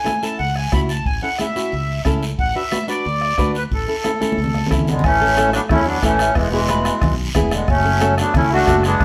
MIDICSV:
0, 0, Header, 1, 7, 480
1, 0, Start_track
1, 0, Key_signature, 3, "major"
1, 0, Tempo, 331126
1, 1537, Time_signature, 4, 2, 24, 8
1, 13113, End_track
2, 0, Start_track
2, 0, Title_t, "Nylon-string guitar"
2, 0, Program_c, 0, 24
2, 64, Note_on_c, 0, 61, 61
2, 72, Note_on_c, 0, 64, 58
2, 76, Note_on_c, 0, 69, 72
2, 164, Note_off_c, 0, 61, 0
2, 165, Note_off_c, 0, 64, 0
2, 168, Note_off_c, 0, 69, 0
2, 324, Note_on_c, 0, 61, 63
2, 332, Note_on_c, 0, 64, 54
2, 334, Note_on_c, 0, 69, 65
2, 581, Note_off_c, 0, 61, 0
2, 584, Note_off_c, 0, 64, 0
2, 586, Note_off_c, 0, 69, 0
2, 1046, Note_on_c, 0, 61, 65
2, 1055, Note_on_c, 0, 64, 62
2, 1064, Note_on_c, 0, 66, 75
2, 1304, Note_off_c, 0, 61, 0
2, 1306, Note_off_c, 0, 64, 0
2, 1312, Note_off_c, 0, 66, 0
2, 1775, Note_on_c, 0, 61, 61
2, 1784, Note_on_c, 0, 64, 53
2, 1793, Note_on_c, 0, 69, 64
2, 1860, Note_off_c, 0, 61, 0
2, 1864, Note_off_c, 0, 64, 0
2, 1869, Note_off_c, 0, 69, 0
2, 2023, Note_on_c, 0, 61, 64
2, 2028, Note_on_c, 0, 64, 59
2, 2031, Note_on_c, 0, 68, 71
2, 2104, Note_off_c, 0, 61, 0
2, 2105, Note_off_c, 0, 64, 0
2, 2108, Note_off_c, 0, 68, 0
2, 2250, Note_on_c, 0, 61, 60
2, 2261, Note_on_c, 0, 64, 55
2, 2264, Note_on_c, 0, 66, 67
2, 2506, Note_off_c, 0, 61, 0
2, 2511, Note_off_c, 0, 64, 0
2, 2514, Note_off_c, 0, 66, 0
2, 2973, Note_on_c, 0, 61, 83
2, 2980, Note_on_c, 0, 64, 76
2, 2991, Note_on_c, 0, 69, 89
2, 3230, Note_off_c, 0, 61, 0
2, 3231, Note_off_c, 0, 64, 0
2, 3238, Note_off_c, 0, 69, 0
2, 3698, Note_on_c, 0, 62, 64
2, 3707, Note_on_c, 0, 66, 55
2, 3710, Note_on_c, 0, 71, 65
2, 3785, Note_off_c, 0, 62, 0
2, 3786, Note_off_c, 0, 71, 0
2, 3787, Note_off_c, 0, 66, 0
2, 3931, Note_on_c, 0, 62, 64
2, 3941, Note_on_c, 0, 66, 64
2, 3950, Note_on_c, 0, 71, 72
2, 4021, Note_off_c, 0, 62, 0
2, 4026, Note_off_c, 0, 66, 0
2, 4029, Note_off_c, 0, 71, 0
2, 4170, Note_on_c, 0, 62, 63
2, 4178, Note_on_c, 0, 66, 58
2, 4185, Note_on_c, 0, 71, 71
2, 4430, Note_off_c, 0, 62, 0
2, 4432, Note_off_c, 0, 66, 0
2, 4433, Note_off_c, 0, 71, 0
2, 4901, Note_on_c, 0, 62, 80
2, 4905, Note_on_c, 0, 66, 73
2, 4914, Note_on_c, 0, 71, 94
2, 5155, Note_off_c, 0, 62, 0
2, 5156, Note_off_c, 0, 66, 0
2, 5161, Note_off_c, 0, 71, 0
2, 5618, Note_on_c, 0, 61, 59
2, 5628, Note_on_c, 0, 64, 53
2, 5636, Note_on_c, 0, 69, 63
2, 5706, Note_off_c, 0, 61, 0
2, 5709, Note_off_c, 0, 64, 0
2, 5714, Note_off_c, 0, 69, 0
2, 5863, Note_on_c, 0, 61, 67
2, 5870, Note_on_c, 0, 64, 60
2, 5873, Note_on_c, 0, 69, 70
2, 5949, Note_off_c, 0, 61, 0
2, 5949, Note_off_c, 0, 64, 0
2, 5953, Note_off_c, 0, 69, 0
2, 6096, Note_on_c, 0, 61, 71
2, 6103, Note_on_c, 0, 64, 67
2, 6109, Note_on_c, 0, 69, 81
2, 6353, Note_off_c, 0, 61, 0
2, 6356, Note_off_c, 0, 64, 0
2, 6359, Note_off_c, 0, 69, 0
2, 6818, Note_on_c, 0, 61, 78
2, 6818, Note_on_c, 0, 64, 71
2, 6823, Note_on_c, 0, 69, 85
2, 7073, Note_off_c, 0, 64, 0
2, 7074, Note_off_c, 0, 61, 0
2, 7076, Note_off_c, 0, 69, 0
2, 7544, Note_on_c, 0, 61, 62
2, 7558, Note_on_c, 0, 64, 60
2, 7560, Note_on_c, 0, 69, 75
2, 7629, Note_off_c, 0, 61, 0
2, 7636, Note_off_c, 0, 64, 0
2, 7636, Note_off_c, 0, 69, 0
2, 7785, Note_on_c, 0, 61, 74
2, 7790, Note_on_c, 0, 64, 66
2, 7796, Note_on_c, 0, 69, 80
2, 8120, Note_off_c, 0, 61, 0
2, 8124, Note_off_c, 0, 64, 0
2, 8125, Note_off_c, 0, 69, 0
2, 8739, Note_on_c, 0, 61, 78
2, 8748, Note_on_c, 0, 64, 70
2, 8755, Note_on_c, 0, 69, 85
2, 8992, Note_off_c, 0, 61, 0
2, 8997, Note_off_c, 0, 64, 0
2, 9000, Note_off_c, 0, 69, 0
2, 9465, Note_on_c, 0, 59, 67
2, 9471, Note_on_c, 0, 64, 66
2, 9477, Note_on_c, 0, 68, 76
2, 9548, Note_off_c, 0, 64, 0
2, 9549, Note_off_c, 0, 59, 0
2, 9553, Note_off_c, 0, 68, 0
2, 9691, Note_on_c, 0, 59, 73
2, 9702, Note_on_c, 0, 64, 63
2, 9708, Note_on_c, 0, 71, 79
2, 10032, Note_off_c, 0, 59, 0
2, 10034, Note_off_c, 0, 64, 0
2, 10040, Note_off_c, 0, 71, 0
2, 10656, Note_on_c, 0, 59, 96
2, 10660, Note_on_c, 0, 64, 84
2, 10666, Note_on_c, 0, 68, 107
2, 10908, Note_off_c, 0, 59, 0
2, 10908, Note_off_c, 0, 64, 0
2, 10913, Note_off_c, 0, 68, 0
2, 11366, Note_on_c, 0, 61, 71
2, 11374, Note_on_c, 0, 66, 61
2, 11381, Note_on_c, 0, 69, 80
2, 11455, Note_off_c, 0, 61, 0
2, 11457, Note_off_c, 0, 66, 0
2, 11462, Note_off_c, 0, 69, 0
2, 11606, Note_on_c, 0, 61, 77
2, 11611, Note_on_c, 0, 66, 67
2, 11618, Note_on_c, 0, 69, 82
2, 11946, Note_off_c, 0, 61, 0
2, 11948, Note_off_c, 0, 66, 0
2, 11952, Note_off_c, 0, 69, 0
2, 12566, Note_on_c, 0, 61, 78
2, 12574, Note_on_c, 0, 66, 69
2, 12586, Note_on_c, 0, 69, 81
2, 12821, Note_off_c, 0, 61, 0
2, 12825, Note_off_c, 0, 66, 0
2, 12831, Note_off_c, 0, 69, 0
2, 13113, End_track
3, 0, Start_track
3, 0, Title_t, "Accordion"
3, 0, Program_c, 1, 21
3, 0, Note_on_c, 1, 80, 92
3, 325, Note_on_c, 1, 81, 88
3, 342, Note_off_c, 1, 80, 0
3, 552, Note_off_c, 1, 81, 0
3, 560, Note_on_c, 1, 78, 95
3, 790, Note_off_c, 1, 78, 0
3, 811, Note_on_c, 1, 80, 86
3, 1036, Note_off_c, 1, 80, 0
3, 1062, Note_on_c, 1, 83, 86
3, 1169, Note_off_c, 1, 83, 0
3, 1294, Note_on_c, 1, 81, 95
3, 1518, Note_off_c, 1, 81, 0
3, 1537, Note_on_c, 1, 80, 100
3, 1760, Note_off_c, 1, 80, 0
3, 1775, Note_on_c, 1, 78, 90
3, 2000, Note_off_c, 1, 78, 0
3, 2021, Note_on_c, 1, 76, 82
3, 2923, Note_off_c, 1, 76, 0
3, 3474, Note_on_c, 1, 78, 100
3, 3691, Note_off_c, 1, 78, 0
3, 3704, Note_on_c, 1, 76, 95
3, 4150, Note_off_c, 1, 76, 0
3, 4202, Note_on_c, 1, 74, 97
3, 5096, Note_off_c, 1, 74, 0
3, 5169, Note_on_c, 1, 71, 84
3, 5271, Note_off_c, 1, 71, 0
3, 5420, Note_on_c, 1, 69, 84
3, 6785, Note_off_c, 1, 69, 0
3, 7076, Note_on_c, 1, 59, 82
3, 7085, Note_on_c, 1, 56, 62
3, 7294, Note_off_c, 1, 59, 0
3, 7299, Note_off_c, 1, 56, 0
3, 7304, Note_on_c, 1, 61, 104
3, 7318, Note_on_c, 1, 57, 82
3, 7973, Note_off_c, 1, 61, 0
3, 7981, Note_off_c, 1, 57, 0
3, 8026, Note_on_c, 1, 62, 104
3, 8042, Note_on_c, 1, 59, 78
3, 8133, Note_off_c, 1, 62, 0
3, 8145, Note_off_c, 1, 59, 0
3, 8258, Note_on_c, 1, 64, 110
3, 8287, Note_on_c, 1, 61, 88
3, 8484, Note_off_c, 1, 64, 0
3, 8499, Note_off_c, 1, 61, 0
3, 8500, Note_on_c, 1, 62, 98
3, 8524, Note_on_c, 1, 59, 72
3, 8737, Note_off_c, 1, 59, 0
3, 8737, Note_on_c, 1, 61, 96
3, 8749, Note_off_c, 1, 62, 0
3, 8762, Note_on_c, 1, 57, 73
3, 9185, Note_off_c, 1, 61, 0
3, 9199, Note_off_c, 1, 57, 0
3, 9205, Note_on_c, 1, 59, 99
3, 9230, Note_on_c, 1, 56, 81
3, 9426, Note_off_c, 1, 56, 0
3, 9447, Note_on_c, 1, 56, 90
3, 9460, Note_off_c, 1, 59, 0
3, 9468, Note_on_c, 1, 52, 65
3, 10354, Note_off_c, 1, 56, 0
3, 10364, Note_off_c, 1, 52, 0
3, 10910, Note_on_c, 1, 59, 85
3, 10912, Note_on_c, 1, 56, 69
3, 11128, Note_off_c, 1, 56, 0
3, 11142, Note_on_c, 1, 57, 76
3, 11142, Note_on_c, 1, 61, 95
3, 11150, Note_off_c, 1, 59, 0
3, 11807, Note_off_c, 1, 57, 0
3, 11807, Note_off_c, 1, 61, 0
3, 11874, Note_on_c, 1, 59, 72
3, 11880, Note_on_c, 1, 62, 91
3, 12088, Note_off_c, 1, 59, 0
3, 12091, Note_off_c, 1, 62, 0
3, 12117, Note_on_c, 1, 61, 77
3, 12118, Note_on_c, 1, 64, 102
3, 12329, Note_off_c, 1, 61, 0
3, 12352, Note_off_c, 1, 64, 0
3, 12365, Note_on_c, 1, 62, 77
3, 12368, Note_on_c, 1, 66, 102
3, 12795, Note_off_c, 1, 62, 0
3, 12797, Note_off_c, 1, 66, 0
3, 12826, Note_on_c, 1, 59, 81
3, 12840, Note_on_c, 1, 62, 104
3, 13113, Note_off_c, 1, 59, 0
3, 13113, Note_off_c, 1, 62, 0
3, 13113, End_track
4, 0, Start_track
4, 0, Title_t, "Trombone"
4, 0, Program_c, 2, 57
4, 7063, Note_on_c, 2, 50, 71
4, 7287, Note_off_c, 2, 50, 0
4, 7315, Note_on_c, 2, 52, 83
4, 7979, Note_off_c, 2, 52, 0
4, 8006, Note_on_c, 2, 54, 76
4, 8118, Note_off_c, 2, 54, 0
4, 8241, Note_on_c, 2, 57, 91
4, 8474, Note_off_c, 2, 57, 0
4, 8480, Note_on_c, 2, 54, 82
4, 8714, Note_off_c, 2, 54, 0
4, 8728, Note_on_c, 2, 52, 90
4, 9181, Note_off_c, 2, 52, 0
4, 9195, Note_on_c, 2, 52, 85
4, 9430, Note_off_c, 2, 52, 0
4, 9439, Note_on_c, 2, 47, 75
4, 10350, Note_off_c, 2, 47, 0
4, 10898, Note_on_c, 2, 50, 69
4, 11121, Note_off_c, 2, 50, 0
4, 11136, Note_on_c, 2, 54, 77
4, 11804, Note_off_c, 2, 54, 0
4, 11868, Note_on_c, 2, 54, 71
4, 12085, Note_off_c, 2, 54, 0
4, 12112, Note_on_c, 2, 57, 80
4, 12326, Note_off_c, 2, 57, 0
4, 12348, Note_on_c, 2, 57, 86
4, 12786, Note_off_c, 2, 57, 0
4, 12828, Note_on_c, 2, 56, 85
4, 13113, Note_off_c, 2, 56, 0
4, 13113, End_track
5, 0, Start_track
5, 0, Title_t, "Fingered electric bass"
5, 0, Program_c, 3, 33
5, 572, Note_on_c, 3, 37, 79
5, 958, Note_off_c, 3, 37, 0
5, 1049, Note_on_c, 3, 37, 83
5, 1436, Note_off_c, 3, 37, 0
5, 1527, Note_on_c, 3, 33, 88
5, 1723, Note_off_c, 3, 33, 0
5, 2506, Note_on_c, 3, 37, 78
5, 2888, Note_off_c, 3, 37, 0
5, 2977, Note_on_c, 3, 37, 83
5, 3363, Note_off_c, 3, 37, 0
5, 3457, Note_on_c, 3, 33, 89
5, 3651, Note_off_c, 3, 33, 0
5, 4432, Note_on_c, 3, 38, 82
5, 4813, Note_off_c, 3, 38, 0
5, 4895, Note_on_c, 3, 38, 81
5, 5283, Note_off_c, 3, 38, 0
5, 5380, Note_on_c, 3, 33, 84
5, 5574, Note_off_c, 3, 33, 0
5, 6340, Note_on_c, 3, 37, 76
5, 6726, Note_off_c, 3, 37, 0
5, 6831, Note_on_c, 3, 37, 82
5, 7213, Note_off_c, 3, 37, 0
5, 7309, Note_on_c, 3, 33, 103
5, 8074, Note_off_c, 3, 33, 0
5, 8256, Note_on_c, 3, 40, 88
5, 8643, Note_off_c, 3, 40, 0
5, 8734, Note_on_c, 3, 33, 105
5, 9121, Note_off_c, 3, 33, 0
5, 9214, Note_on_c, 3, 28, 107
5, 9984, Note_off_c, 3, 28, 0
5, 10168, Note_on_c, 3, 35, 91
5, 10555, Note_off_c, 3, 35, 0
5, 10652, Note_on_c, 3, 28, 110
5, 11038, Note_off_c, 3, 28, 0
5, 11132, Note_on_c, 3, 30, 107
5, 11900, Note_off_c, 3, 30, 0
5, 12094, Note_on_c, 3, 37, 94
5, 12477, Note_off_c, 3, 37, 0
5, 12573, Note_on_c, 3, 30, 104
5, 12956, Note_off_c, 3, 30, 0
5, 13048, Note_on_c, 3, 28, 106
5, 13113, Note_off_c, 3, 28, 0
5, 13113, End_track
6, 0, Start_track
6, 0, Title_t, "Two-headed folk drums"
6, 90, Note_on_c, 9, 37, 68
6, 235, Note_off_c, 9, 37, 0
6, 806, Note_on_c, 9, 37, 63
6, 951, Note_off_c, 9, 37, 0
6, 1047, Note_on_c, 9, 37, 76
6, 1048, Note_on_c, 9, 36, 77
6, 1192, Note_off_c, 9, 37, 0
6, 1193, Note_off_c, 9, 36, 0
6, 1529, Note_on_c, 9, 36, 74
6, 1674, Note_off_c, 9, 36, 0
6, 2007, Note_on_c, 9, 37, 73
6, 2152, Note_off_c, 9, 37, 0
6, 2969, Note_on_c, 9, 37, 75
6, 2976, Note_on_c, 9, 36, 75
6, 3114, Note_off_c, 9, 37, 0
6, 3121, Note_off_c, 9, 36, 0
6, 3457, Note_on_c, 9, 36, 75
6, 3602, Note_off_c, 9, 36, 0
6, 3940, Note_on_c, 9, 37, 75
6, 4085, Note_off_c, 9, 37, 0
6, 4659, Note_on_c, 9, 37, 65
6, 4804, Note_off_c, 9, 37, 0
6, 4896, Note_on_c, 9, 37, 73
6, 4899, Note_on_c, 9, 36, 75
6, 5041, Note_off_c, 9, 37, 0
6, 5044, Note_off_c, 9, 36, 0
6, 5384, Note_on_c, 9, 36, 75
6, 5529, Note_off_c, 9, 36, 0
6, 5860, Note_on_c, 9, 37, 72
6, 6005, Note_off_c, 9, 37, 0
6, 6588, Note_on_c, 9, 37, 62
6, 6733, Note_off_c, 9, 37, 0
6, 6826, Note_on_c, 9, 37, 78
6, 6829, Note_on_c, 9, 36, 77
6, 6971, Note_off_c, 9, 37, 0
6, 6974, Note_off_c, 9, 36, 0
6, 7306, Note_on_c, 9, 37, 86
6, 7309, Note_on_c, 9, 36, 88
6, 7451, Note_off_c, 9, 37, 0
6, 7454, Note_off_c, 9, 36, 0
6, 7791, Note_on_c, 9, 37, 78
6, 7936, Note_off_c, 9, 37, 0
6, 8021, Note_on_c, 9, 37, 85
6, 8166, Note_off_c, 9, 37, 0
6, 8254, Note_on_c, 9, 37, 88
6, 8259, Note_on_c, 9, 36, 84
6, 8399, Note_off_c, 9, 37, 0
6, 8404, Note_off_c, 9, 36, 0
6, 8736, Note_on_c, 9, 36, 75
6, 8738, Note_on_c, 9, 37, 83
6, 8881, Note_off_c, 9, 36, 0
6, 8883, Note_off_c, 9, 37, 0
6, 8975, Note_on_c, 9, 37, 87
6, 9120, Note_off_c, 9, 37, 0
6, 9209, Note_on_c, 9, 37, 89
6, 9212, Note_on_c, 9, 36, 89
6, 9354, Note_off_c, 9, 37, 0
6, 9357, Note_off_c, 9, 36, 0
6, 9693, Note_on_c, 9, 37, 87
6, 9838, Note_off_c, 9, 37, 0
6, 9930, Note_on_c, 9, 37, 88
6, 10075, Note_off_c, 9, 37, 0
6, 10168, Note_on_c, 9, 36, 89
6, 10169, Note_on_c, 9, 37, 86
6, 10313, Note_off_c, 9, 36, 0
6, 10314, Note_off_c, 9, 37, 0
6, 10651, Note_on_c, 9, 36, 79
6, 10651, Note_on_c, 9, 37, 87
6, 10796, Note_off_c, 9, 36, 0
6, 10796, Note_off_c, 9, 37, 0
6, 10893, Note_on_c, 9, 37, 87
6, 11038, Note_off_c, 9, 37, 0
6, 11134, Note_on_c, 9, 36, 86
6, 11135, Note_on_c, 9, 37, 85
6, 11279, Note_off_c, 9, 36, 0
6, 11280, Note_off_c, 9, 37, 0
6, 11615, Note_on_c, 9, 37, 83
6, 11760, Note_off_c, 9, 37, 0
6, 11854, Note_on_c, 9, 37, 85
6, 11999, Note_off_c, 9, 37, 0
6, 12091, Note_on_c, 9, 37, 90
6, 12092, Note_on_c, 9, 36, 87
6, 12236, Note_off_c, 9, 37, 0
6, 12237, Note_off_c, 9, 36, 0
6, 12569, Note_on_c, 9, 37, 88
6, 12571, Note_on_c, 9, 36, 75
6, 12714, Note_off_c, 9, 37, 0
6, 12716, Note_off_c, 9, 36, 0
6, 12804, Note_on_c, 9, 37, 85
6, 12949, Note_off_c, 9, 37, 0
6, 13049, Note_on_c, 9, 36, 88
6, 13050, Note_on_c, 9, 37, 82
6, 13113, Note_off_c, 9, 36, 0
6, 13113, Note_off_c, 9, 37, 0
6, 13113, End_track
7, 0, Start_track
7, 0, Title_t, "Drums"
7, 91, Note_on_c, 9, 73, 61
7, 97, Note_on_c, 9, 63, 77
7, 236, Note_off_c, 9, 73, 0
7, 242, Note_off_c, 9, 63, 0
7, 330, Note_on_c, 9, 73, 67
7, 475, Note_off_c, 9, 73, 0
7, 568, Note_on_c, 9, 74, 64
7, 585, Note_on_c, 9, 63, 30
7, 713, Note_off_c, 9, 74, 0
7, 730, Note_off_c, 9, 63, 0
7, 1055, Note_on_c, 9, 63, 72
7, 1062, Note_on_c, 9, 73, 61
7, 1200, Note_off_c, 9, 63, 0
7, 1207, Note_off_c, 9, 73, 0
7, 1293, Note_on_c, 9, 73, 60
7, 1438, Note_off_c, 9, 73, 0
7, 1542, Note_on_c, 9, 63, 30
7, 1542, Note_on_c, 9, 74, 66
7, 1686, Note_off_c, 9, 63, 0
7, 1687, Note_off_c, 9, 74, 0
7, 2018, Note_on_c, 9, 73, 65
7, 2022, Note_on_c, 9, 63, 76
7, 2163, Note_off_c, 9, 73, 0
7, 2167, Note_off_c, 9, 63, 0
7, 2264, Note_on_c, 9, 73, 65
7, 2409, Note_off_c, 9, 73, 0
7, 2498, Note_on_c, 9, 74, 62
7, 2503, Note_on_c, 9, 63, 30
7, 2643, Note_off_c, 9, 74, 0
7, 2648, Note_off_c, 9, 63, 0
7, 2984, Note_on_c, 9, 73, 62
7, 2986, Note_on_c, 9, 63, 71
7, 3129, Note_off_c, 9, 73, 0
7, 3131, Note_off_c, 9, 63, 0
7, 3226, Note_on_c, 9, 73, 62
7, 3371, Note_off_c, 9, 73, 0
7, 3463, Note_on_c, 9, 74, 67
7, 3469, Note_on_c, 9, 63, 31
7, 3607, Note_off_c, 9, 74, 0
7, 3614, Note_off_c, 9, 63, 0
7, 3938, Note_on_c, 9, 73, 67
7, 3948, Note_on_c, 9, 63, 76
7, 4083, Note_off_c, 9, 73, 0
7, 4093, Note_off_c, 9, 63, 0
7, 4178, Note_on_c, 9, 73, 66
7, 4323, Note_off_c, 9, 73, 0
7, 4421, Note_on_c, 9, 74, 62
7, 4432, Note_on_c, 9, 63, 31
7, 4566, Note_off_c, 9, 74, 0
7, 4577, Note_off_c, 9, 63, 0
7, 4904, Note_on_c, 9, 73, 60
7, 4909, Note_on_c, 9, 63, 75
7, 5049, Note_off_c, 9, 73, 0
7, 5054, Note_off_c, 9, 63, 0
7, 5148, Note_on_c, 9, 73, 63
7, 5293, Note_off_c, 9, 73, 0
7, 5386, Note_on_c, 9, 74, 65
7, 5387, Note_on_c, 9, 63, 30
7, 5531, Note_off_c, 9, 74, 0
7, 5532, Note_off_c, 9, 63, 0
7, 5864, Note_on_c, 9, 73, 67
7, 5867, Note_on_c, 9, 63, 75
7, 6009, Note_off_c, 9, 73, 0
7, 6012, Note_off_c, 9, 63, 0
7, 6112, Note_on_c, 9, 63, 85
7, 6113, Note_on_c, 9, 73, 67
7, 6257, Note_off_c, 9, 63, 0
7, 6258, Note_off_c, 9, 73, 0
7, 6265, Note_on_c, 9, 63, 79
7, 6354, Note_on_c, 9, 74, 63
7, 6410, Note_off_c, 9, 63, 0
7, 6436, Note_on_c, 9, 64, 68
7, 6499, Note_off_c, 9, 74, 0
7, 6581, Note_off_c, 9, 64, 0
7, 6597, Note_on_c, 9, 63, 68
7, 6742, Note_off_c, 9, 63, 0
7, 6760, Note_on_c, 9, 64, 88
7, 6835, Note_on_c, 9, 73, 59
7, 6905, Note_off_c, 9, 64, 0
7, 6925, Note_on_c, 9, 64, 76
7, 6980, Note_off_c, 9, 73, 0
7, 7066, Note_on_c, 9, 73, 64
7, 7070, Note_off_c, 9, 64, 0
7, 7084, Note_on_c, 9, 64, 84
7, 7211, Note_off_c, 9, 73, 0
7, 7229, Note_off_c, 9, 64, 0
7, 7236, Note_on_c, 9, 64, 86
7, 7305, Note_on_c, 9, 74, 76
7, 7328, Note_on_c, 9, 63, 33
7, 7381, Note_off_c, 9, 64, 0
7, 7450, Note_off_c, 9, 74, 0
7, 7473, Note_off_c, 9, 63, 0
7, 7783, Note_on_c, 9, 73, 73
7, 7800, Note_on_c, 9, 63, 83
7, 7928, Note_off_c, 9, 73, 0
7, 7945, Note_off_c, 9, 63, 0
7, 8021, Note_on_c, 9, 73, 77
7, 8166, Note_off_c, 9, 73, 0
7, 8274, Note_on_c, 9, 63, 35
7, 8274, Note_on_c, 9, 64, 90
7, 8275, Note_on_c, 9, 74, 74
7, 8419, Note_off_c, 9, 63, 0
7, 8419, Note_off_c, 9, 64, 0
7, 8420, Note_off_c, 9, 74, 0
7, 8744, Note_on_c, 9, 73, 73
7, 8751, Note_on_c, 9, 63, 83
7, 8889, Note_off_c, 9, 73, 0
7, 8895, Note_off_c, 9, 63, 0
7, 8977, Note_on_c, 9, 73, 71
7, 9122, Note_off_c, 9, 73, 0
7, 9211, Note_on_c, 9, 74, 75
7, 9224, Note_on_c, 9, 63, 37
7, 9356, Note_off_c, 9, 74, 0
7, 9369, Note_off_c, 9, 63, 0
7, 9687, Note_on_c, 9, 73, 74
7, 9708, Note_on_c, 9, 63, 90
7, 9832, Note_off_c, 9, 73, 0
7, 9853, Note_off_c, 9, 63, 0
7, 9930, Note_on_c, 9, 73, 73
7, 10075, Note_off_c, 9, 73, 0
7, 10172, Note_on_c, 9, 74, 76
7, 10189, Note_on_c, 9, 63, 38
7, 10189, Note_on_c, 9, 64, 87
7, 10317, Note_off_c, 9, 74, 0
7, 10334, Note_off_c, 9, 63, 0
7, 10334, Note_off_c, 9, 64, 0
7, 10653, Note_on_c, 9, 73, 73
7, 10666, Note_on_c, 9, 63, 83
7, 10666, Note_on_c, 9, 64, 76
7, 10798, Note_off_c, 9, 73, 0
7, 10811, Note_off_c, 9, 63, 0
7, 10811, Note_off_c, 9, 64, 0
7, 10892, Note_on_c, 9, 73, 71
7, 11037, Note_off_c, 9, 73, 0
7, 11132, Note_on_c, 9, 74, 76
7, 11146, Note_on_c, 9, 63, 34
7, 11277, Note_off_c, 9, 74, 0
7, 11290, Note_off_c, 9, 63, 0
7, 11603, Note_on_c, 9, 73, 73
7, 11622, Note_on_c, 9, 63, 85
7, 11748, Note_off_c, 9, 73, 0
7, 11767, Note_off_c, 9, 63, 0
7, 11858, Note_on_c, 9, 73, 75
7, 12003, Note_off_c, 9, 73, 0
7, 12097, Note_on_c, 9, 74, 72
7, 12101, Note_on_c, 9, 63, 38
7, 12101, Note_on_c, 9, 64, 90
7, 12242, Note_off_c, 9, 74, 0
7, 12246, Note_off_c, 9, 63, 0
7, 12246, Note_off_c, 9, 64, 0
7, 12579, Note_on_c, 9, 63, 83
7, 12583, Note_on_c, 9, 73, 72
7, 12724, Note_off_c, 9, 63, 0
7, 12728, Note_off_c, 9, 73, 0
7, 12814, Note_on_c, 9, 73, 69
7, 12959, Note_off_c, 9, 73, 0
7, 13055, Note_on_c, 9, 74, 77
7, 13058, Note_on_c, 9, 63, 34
7, 13058, Note_on_c, 9, 64, 70
7, 13113, Note_off_c, 9, 63, 0
7, 13113, Note_off_c, 9, 64, 0
7, 13113, Note_off_c, 9, 74, 0
7, 13113, End_track
0, 0, End_of_file